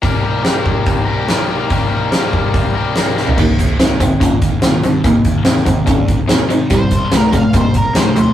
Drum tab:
CC |----------------|----------------|x---------------|----------------|
HH |o---o---o---o---|o---o---o---o---|--x-x-x-x-x-x-x-|x-x-x-x-x-x-x-x-|
SD |----o-------o---|----o-------o-o-|----o-------o---|----oo------o---|
FT |----------------|---------------o|----------------|----------------|
BD |o-----o-o-------|o-----o-o-------|o-o---o-o-o-----|o-o---o-o-o-----|

CC |----------------|
HH |x-x-x-x-x-x-x-x-|
SD |----oo------o---|
FT |----------------|
BD |o-o---o-o-o-----|